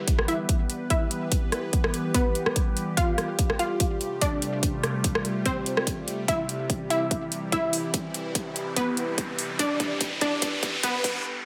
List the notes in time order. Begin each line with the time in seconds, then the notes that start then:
Already playing: E3 G3 B3 E4 G4 B4 E5
0.08 kick, closed hi-hat
0.19 cross-stick
0.28 E4 E5, closed hi-hat
0.49 kick, closed hi-hat
0.70 closed hi-hat
0.90 E4 E5, kick, closed hi-hat
1.11 closed hi-hat
1.32 kick, closed hi-hat
1.52 cross-stick, closed hi-hat
1.73 kick, closed hi-hat
1.84 cross-stick
1.94 closed hi-hat
2.14 B3 B4, kick, closed hi-hat
2.35 closed hi-hat
2.46 cross-stick
2.56 kick, closed hi-hat
2.77 closed hi-hat
2.97 C3 A3 F4 F5, kick, closed hi-hat
3.18 cross-stick, closed hi-hat
3.39 kick, closed hi-hat
3.50 cross-stick
3.59 F4 F5, closed hi-hat
3.80 kick, closed hi-hat
4.01 closed hi-hat
4.21 D4 D5, kick, closed hi-hat
4.42 closed hi-hat
4.63 kick, closed hi-hat
4.84 cross-stick, closed hi-hat
5.04 kick, closed hi-hat
5.15 cross-stick
5.25 closed hi-hat
5.46 C4 C5, kick, closed hi-hat
5.66 closed hi-hat
5.77 cross-stick
5.87 kick, closed hi-hat
6.08 closed hi-hat
6.28 E3 E4 E5, kick, closed hi-hat, riser
6.49 closed hi-hat
6.70 kick, closed hi-hat
6.90 E4 E5, closed hi-hat
7.11 kick, closed hi-hat
7.32 closed hi-hat
7.52 E4 E5, kick, closed hi-hat
7.73 open hi-hat
7.94 kick, closed hi-hat
8.14 closed hi-hat
8.35 kick, closed hi-hat
8.56 closed hi-hat
8.76 B3 B4, kick, closed hi-hat
8.97 closed hi-hat
9.18 kick, closed hi-hat
9.39 open hi-hat
9.59 D3 G3 B3 D4 G4 B4 D5, kick, closed hi-hat
9.80 kick, closed hi-hat
10.01 kick, closed hi-hat
10.21 D4 D5, kick, closed hi-hat
10.42 kick, closed hi-hat
10.63 kick, closed hi-hat
10.83 B3 B4, kick, closed hi-hat
11.04 kick, open hi-hat